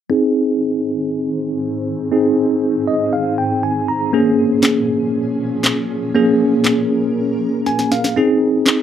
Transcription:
0.10 4.10 G#2 medium
0.10 4.10 D#3 medium
0.10 2.08 C4 medium
0.10 4.10 C4 medium
0.10 2.08 D#4 medium
0.10 6.11 G#4 medium
0.10 2.08 G#4 medium
2.11 4.09 C4 medium
2.11 4.10 D#4 medium
2.11 4.10 G#4 medium
2.87 3.11 D#5 medium
3.13 3.36 F5 medium
3.38 3.61 G5 medium
3.63 3.87 G#5 medium
3.88 4.12 A#5 medium
4.13 8.13 A#2 medium
4.13 8.13 F3 medium
4.13 6.11 A#3 medium
4.13 8.13 C#4 medium
4.13 6.11 C#4 medium
4.13 6.11 G#4 medium
4.63 snare medium
4.63 clap loud
5.64 snare medium
5.64 clap loud
6.15 8.13 A#3 medium
6.15 8.13 C#4 medium
6.15 8.13 G#4 medium
6.15 8.15 A#4 medium
6.64 snare medium
6.64 clap loud
7.66 7.90 G#5 medium
7.66 snare medium
7.79 snare medium
7.92 8.15 F5 medium
7.92 snare medium
8.04 snare medium
8.16 8.82 C4 medium
8.16 8.82 D#4 medium
8.16 8.82 G#4 medium
8.66 snare medium
8.66 clap loud

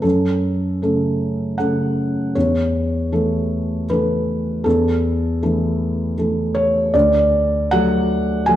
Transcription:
0.02 0.79 F#2 soft
0.02 0.81 A4 medium
0.82 1.55 C#3 soft
0.82 1.55 A3 soft
0.82 1.55 A4 soft
1.58 2.31 C#3 soft
1.58 2.31 A3 soft
1.58 2.32 A4 soft
1.58 2.35 F#5 medium
2.35 3.11 E2 soft
2.35 3.89 C#5 medium
3.12 3.85 E3 soft
3.12 3.85 A3 soft
3.12 3.85 A4 soft
3.90 4.62 E3 soft
3.90 4.63 A3 soft
3.90 4.63 A4 soft
3.90 4.66 B4 medium
4.64 5.40 E2 soft
4.64 5.41 A4 medium
5.42 6.14 E3 soft
5.42 6.14 A3 soft
5.42 6.14 A4 soft
6.18 6.90 E3 soft
6.18 6.91 A3 soft
6.18 6.91 A4 soft
6.55 6.93 C#5 medium
6.94 7.67 D2 medium
6.94 7.69 D5 medium
7.71 8.42 F#3 soft
7.71 8.42 A3 soft
7.71 8.43 F#4 medium
7.71 8.46 F#5 loud
8.46 8.56 F#3 soft
8.46 8.56 A3 soft
8.46 8.56 F#4 soft
8.46 8.56 G#5 medium

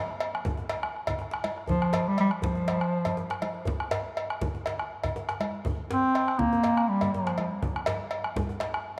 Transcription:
0.09 bombo rim soft
0.09 djembe slap soft
0.09 high conga soft
0.20 bombo rim soft
0.20 cowbell soft
0.20 djembe slap soft
0.35 bombo rim medium
0.45 bombo low medium
0.45 high conga medium
0.45 low conga medium
0.45 djembe bass medium
0.57 djembe tone medium
0.69 bombo rim soft
0.69 cowbell soft
0.69 djembe slap medium
0.83 bombo rim medium
0.83 high conga soft
0.96 bombo rim soft
1.07 bombo low medium
1.07 cowbell medium
1.07 djembe bass medium
1.07 low conga soft
1.19 bombo rim soft
1.19 djembe tone medium
1.31 bombo rim medium
1.31 djembe slap medium
1.31 high conga soft
1.44 cowbell medium
1.44 high conga medium
1.57 bombo rim soft
1.57 djembe slap soft
1.68 2.09 F3 medium
1.68 bombo low medium
1.68 djembe bass medium
1.68 low conga medium
1.82 bombo rim medium
1.82 high conga soft
1.93 cowbell medium
1.93 djembe slap medium
1.93 djembe tone medium
2.07 2.19 G3 medium
2.07 high conga soft
2.18 2.31 G3 medium
2.18 cowbell medium
2.18 djembe slap soft
2.31 bombo rim medium
2.42 3.38 F3 medium
2.42 bombo low medium
2.42 high conga medium
2.42 djembe bass medium
2.42 low conga medium
2.55 djembe tone medium
2.68 cowbell soft
2.68 djembe slap medium
2.81 bombo rim medium
3.05 cowbell soft
3.05 djembe bass medium
3.05 low conga soft
3.17 djembe slap soft
3.17 djembe tone medium
3.17 high conga soft
3.30 bombo rim medium
3.30 djembe slap soft
3.42 cowbell soft
3.42 high conga medium
3.54 djembe slap soft
3.65 bombo low medium
3.65 djembe bass medium
3.65 low conga medium
3.80 bombo rim medium
3.91 cowbell soft
3.91 djembe slap medium
3.91 djembe tone medium
4.06 high conga soft
4.17 cowbell soft
4.17 djembe slap soft
4.30 bombo rim medium
4.41 bombo low medium
4.41 high conga medium
4.41 djembe bass medium
4.41 low conga medium
4.55 djembe tone medium
4.66 cowbell soft
4.66 djembe slap medium
4.79 bombo rim medium
5.04 bombo low medium
5.04 cowbell soft
5.04 low conga soft
5.04 djembe bass medium
5.16 djembe slap soft
5.16 high conga soft
5.16 djembe tone medium
5.29 bombo rim medium
5.29 djembe slap medium
5.40 cowbell soft
5.40 high conga medium
5.55 djembe slap soft
5.65 bombo low medium
5.65 low conga medium
5.65 djembe bass medium
5.78 high conga soft
5.91 6.40 C4 medium
5.91 djembe slap medium
5.91 djembe tone medium
6.03 high conga soft
6.15 cowbell soft
6.15 djembe slap soft
6.28 bombo rim medium
6.39 6.90 A#3 medium
6.39 bombo low medium
6.39 high conga medium
6.39 low conga medium
6.53 djembe tone medium
6.64 cowbell soft
6.64 djembe slap medium
6.77 bombo rim medium
6.89 7.15 G3 medium
7.01 cowbell soft
7.01 djembe bass medium
7.01 low conga soft
7.13 7.51 F3 medium
7.13 djembe slap soft
7.13 high conga soft
7.13 djembe tone medium
7.27 bombo rim medium
7.27 djembe slap medium
7.38 cowbell soft
7.38 high conga medium
7.51 djembe slap soft
7.62 bombo rim soft
7.62 bombo low medium
7.62 djembe slap soft
7.62 high conga soft
7.62 djembe bass medium
7.62 low conga medium
7.76 bombo rim medium
7.86 cowbell medium
7.86 djembe slap medium
7.86 djembe tone medium
8.00 high conga soft
8.11 cowbell soft
8.24 bombo rim medium
8.24 djembe slap soft
8.24 high conga soft
8.36 bombo low medium
8.36 high conga medium
8.36 low conga medium
8.36 djembe bass medium
8.49 djembe tone medium
8.60 bombo rim soft
8.60 cowbell soft
8.60 djembe slap medium
8.60 high conga soft
8.74 bombo rim medium

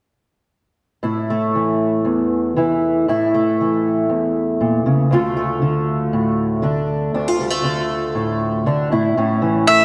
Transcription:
1.03 2.05 A2 medium
1.03 2.56 E4 soft
1.30 3.34 A3 soft
1.55 2.55 E3 soft
2.05 3.04 E2 soft
2.56 3.04 E3 soft
2.56 3.05 E4 soft
3.08 4.10 A2 medium
3.08 5.09 E4 medium
3.34 5.12 A3 medium
3.60 5.09 E3 soft
4.09 5.08 E2 soft
4.61 4.86 A#2 soft
4.86 5.11 C#3 soft
5.11 7.13 D2 medium
5.11 5.61 D3 soft
5.11 5.36 A3 soft
5.11 6.63 F4 medium
5.37 7.40 A3 medium
5.62 6.61 D3 soft
6.13 6.64 A2 medium
6.62 7.63 D3 soft
6.62 7.13 D4 soft
7.14 8.92 D2 medium
7.14 7.28 D4 medium
7.28 8.66 F4 soft
7.40 7.50 G3 medium
7.50 8.91 A3 soft
7.64 8.65 D3 medium
8.15 8.66 A2 medium
8.66 8.92 D3 soft
8.66 8.92 D4 soft
8.92 9.16 A2 medium
8.92 9.15 E4 medium
9.17 9.85 A2 medium
9.17 9.85 C#4 medium
9.42 9.85 E3 medium
9.67 9.85 A3 soft
9.67 9.85 E5 medium

